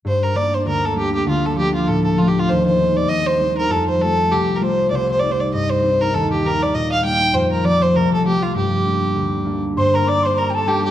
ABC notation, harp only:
X:1
M:4/4
L:1/8
Q:"Swing" 1/4=198
K:Gm
V:1 name="Harp"
G,,2 [G,B,D]2 D,,2 [G,B,D]2 | D,,2 [F,A,D]2 A,,2 [F,A,D]2 | E,,2 [G,CE]2 E,,2 [G,CE]2 | F,,2 [G,A,F]2 C,,2 [G,A,F]2 |
C,,2 [G,CE]2 G,,2 [G,CE]2 | E,,2 [G,B,E]2 B,,2 [G,B,E]2 | F,,2 [F,A,C]2 C,,2 [F,A,C]2 | G,,2 [G,B,D]2 D,,2 [G,B,D]2 |
G,,2 [G,B,D]2 z2 [G,B,D]2 |]